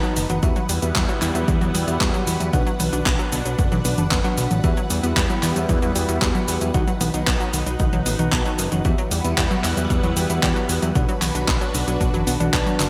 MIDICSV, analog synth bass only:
0, 0, Header, 1, 2, 480
1, 0, Start_track
1, 0, Key_signature, 1, "minor"
1, 0, Tempo, 526316
1, 391, Time_signature, 4, 2, 24, 8
1, 11760, End_track
2, 0, Start_track
2, 0, Title_t, "Analog synth bass"
2, 0, Program_c, 0, 38
2, 151, Note_on_c, 0, 30, 97
2, 241, Note_off_c, 0, 30, 0
2, 271, Note_on_c, 0, 30, 78
2, 361, Note_off_c, 0, 30, 0
2, 391, Note_on_c, 0, 40, 100
2, 481, Note_off_c, 0, 40, 0
2, 631, Note_on_c, 0, 40, 96
2, 721, Note_off_c, 0, 40, 0
2, 750, Note_on_c, 0, 40, 84
2, 841, Note_off_c, 0, 40, 0
2, 871, Note_on_c, 0, 40, 104
2, 961, Note_off_c, 0, 40, 0
2, 1110, Note_on_c, 0, 40, 100
2, 1201, Note_off_c, 0, 40, 0
2, 1230, Note_on_c, 0, 40, 80
2, 1321, Note_off_c, 0, 40, 0
2, 1351, Note_on_c, 0, 40, 104
2, 1441, Note_off_c, 0, 40, 0
2, 1470, Note_on_c, 0, 40, 74
2, 1561, Note_off_c, 0, 40, 0
2, 1591, Note_on_c, 0, 40, 100
2, 1681, Note_off_c, 0, 40, 0
2, 1710, Note_on_c, 0, 40, 90
2, 1801, Note_off_c, 0, 40, 0
2, 1831, Note_on_c, 0, 40, 101
2, 1921, Note_off_c, 0, 40, 0
2, 2070, Note_on_c, 0, 40, 89
2, 2161, Note_off_c, 0, 40, 0
2, 2190, Note_on_c, 0, 40, 82
2, 2281, Note_off_c, 0, 40, 0
2, 2311, Note_on_c, 0, 35, 104
2, 2401, Note_off_c, 0, 35, 0
2, 2551, Note_on_c, 0, 35, 96
2, 2641, Note_off_c, 0, 35, 0
2, 2671, Note_on_c, 0, 35, 82
2, 2761, Note_off_c, 0, 35, 0
2, 2791, Note_on_c, 0, 35, 105
2, 2881, Note_off_c, 0, 35, 0
2, 3031, Note_on_c, 0, 35, 101
2, 3121, Note_off_c, 0, 35, 0
2, 3151, Note_on_c, 0, 35, 84
2, 3241, Note_off_c, 0, 35, 0
2, 3271, Note_on_c, 0, 30, 102
2, 3361, Note_off_c, 0, 30, 0
2, 3391, Note_on_c, 0, 35, 73
2, 3481, Note_off_c, 0, 35, 0
2, 3511, Note_on_c, 0, 35, 101
2, 3601, Note_off_c, 0, 35, 0
2, 3631, Note_on_c, 0, 30, 87
2, 3721, Note_off_c, 0, 30, 0
2, 3751, Note_on_c, 0, 30, 96
2, 3841, Note_off_c, 0, 30, 0
2, 3991, Note_on_c, 0, 35, 93
2, 4081, Note_off_c, 0, 35, 0
2, 4111, Note_on_c, 0, 33, 84
2, 4201, Note_off_c, 0, 33, 0
2, 4231, Note_on_c, 0, 40, 106
2, 4321, Note_off_c, 0, 40, 0
2, 4471, Note_on_c, 0, 40, 101
2, 4561, Note_off_c, 0, 40, 0
2, 4591, Note_on_c, 0, 40, 85
2, 4681, Note_off_c, 0, 40, 0
2, 4711, Note_on_c, 0, 40, 106
2, 4801, Note_off_c, 0, 40, 0
2, 4952, Note_on_c, 0, 40, 97
2, 5041, Note_off_c, 0, 40, 0
2, 5071, Note_on_c, 0, 40, 83
2, 5161, Note_off_c, 0, 40, 0
2, 5191, Note_on_c, 0, 40, 105
2, 5281, Note_off_c, 0, 40, 0
2, 5311, Note_on_c, 0, 40, 77
2, 5401, Note_off_c, 0, 40, 0
2, 5431, Note_on_c, 0, 40, 99
2, 5521, Note_off_c, 0, 40, 0
2, 5551, Note_on_c, 0, 40, 89
2, 5641, Note_off_c, 0, 40, 0
2, 5671, Note_on_c, 0, 40, 101
2, 5761, Note_off_c, 0, 40, 0
2, 5911, Note_on_c, 0, 40, 90
2, 6001, Note_off_c, 0, 40, 0
2, 6032, Note_on_c, 0, 40, 79
2, 6121, Note_off_c, 0, 40, 0
2, 6151, Note_on_c, 0, 35, 101
2, 6241, Note_off_c, 0, 35, 0
2, 6391, Note_on_c, 0, 35, 97
2, 6481, Note_off_c, 0, 35, 0
2, 6511, Note_on_c, 0, 35, 86
2, 6601, Note_off_c, 0, 35, 0
2, 6631, Note_on_c, 0, 35, 101
2, 6721, Note_off_c, 0, 35, 0
2, 6872, Note_on_c, 0, 35, 99
2, 6961, Note_off_c, 0, 35, 0
2, 6992, Note_on_c, 0, 35, 81
2, 7081, Note_off_c, 0, 35, 0
2, 7111, Note_on_c, 0, 35, 104
2, 7201, Note_off_c, 0, 35, 0
2, 7231, Note_on_c, 0, 35, 74
2, 7321, Note_off_c, 0, 35, 0
2, 7351, Note_on_c, 0, 33, 98
2, 7441, Note_off_c, 0, 33, 0
2, 7471, Note_on_c, 0, 35, 88
2, 7561, Note_off_c, 0, 35, 0
2, 7591, Note_on_c, 0, 35, 105
2, 7681, Note_off_c, 0, 35, 0
2, 7832, Note_on_c, 0, 30, 96
2, 7921, Note_off_c, 0, 30, 0
2, 7952, Note_on_c, 0, 30, 82
2, 8041, Note_off_c, 0, 30, 0
2, 8071, Note_on_c, 0, 40, 100
2, 8161, Note_off_c, 0, 40, 0
2, 8311, Note_on_c, 0, 40, 93
2, 8401, Note_off_c, 0, 40, 0
2, 8432, Note_on_c, 0, 40, 82
2, 8521, Note_off_c, 0, 40, 0
2, 8551, Note_on_c, 0, 40, 103
2, 8641, Note_off_c, 0, 40, 0
2, 8791, Note_on_c, 0, 40, 102
2, 8881, Note_off_c, 0, 40, 0
2, 8911, Note_on_c, 0, 40, 81
2, 9001, Note_off_c, 0, 40, 0
2, 9031, Note_on_c, 0, 40, 100
2, 9121, Note_off_c, 0, 40, 0
2, 9150, Note_on_c, 0, 40, 76
2, 9240, Note_off_c, 0, 40, 0
2, 9271, Note_on_c, 0, 40, 105
2, 9361, Note_off_c, 0, 40, 0
2, 9391, Note_on_c, 0, 40, 89
2, 9481, Note_off_c, 0, 40, 0
2, 9511, Note_on_c, 0, 40, 100
2, 9601, Note_off_c, 0, 40, 0
2, 9751, Note_on_c, 0, 40, 93
2, 9841, Note_off_c, 0, 40, 0
2, 9871, Note_on_c, 0, 40, 86
2, 9961, Note_off_c, 0, 40, 0
2, 9991, Note_on_c, 0, 35, 102
2, 10081, Note_off_c, 0, 35, 0
2, 10232, Note_on_c, 0, 35, 97
2, 10321, Note_off_c, 0, 35, 0
2, 10351, Note_on_c, 0, 35, 80
2, 10441, Note_off_c, 0, 35, 0
2, 10471, Note_on_c, 0, 35, 108
2, 10561, Note_off_c, 0, 35, 0
2, 10710, Note_on_c, 0, 35, 102
2, 10800, Note_off_c, 0, 35, 0
2, 10830, Note_on_c, 0, 35, 82
2, 10920, Note_off_c, 0, 35, 0
2, 10951, Note_on_c, 0, 35, 104
2, 11041, Note_off_c, 0, 35, 0
2, 11070, Note_on_c, 0, 30, 78
2, 11160, Note_off_c, 0, 30, 0
2, 11190, Note_on_c, 0, 35, 98
2, 11281, Note_off_c, 0, 35, 0
2, 11310, Note_on_c, 0, 35, 87
2, 11401, Note_off_c, 0, 35, 0
2, 11431, Note_on_c, 0, 35, 99
2, 11521, Note_off_c, 0, 35, 0
2, 11670, Note_on_c, 0, 30, 92
2, 11760, Note_off_c, 0, 30, 0
2, 11760, End_track
0, 0, End_of_file